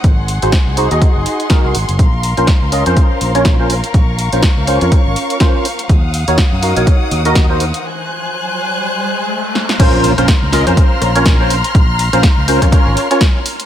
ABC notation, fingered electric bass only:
X:1
M:4/4
L:1/16
Q:"Swing 16ths" 1/4=123
K:Bbm
V:1 name="Fingered electric bass" clef=bass
A,,,3 A,,, z C,,2 E,, z G,,, z3 C,, A,,, G,,, | B,,,3 B,,, z D,,2 F,, z2 B,,,4- B,,, z | B,,,3 B,,, z D,,2 F,, z A,,, z6 | E,,3 E,, z G,,2 B,,, z2 E,,4- E,, z |
z16 | B,,,3 B,,, z D,,2 F,, z2 B,,,4- B,,, z | B,,,3 B,,, z D,,2 F,, z A,,, z6 |]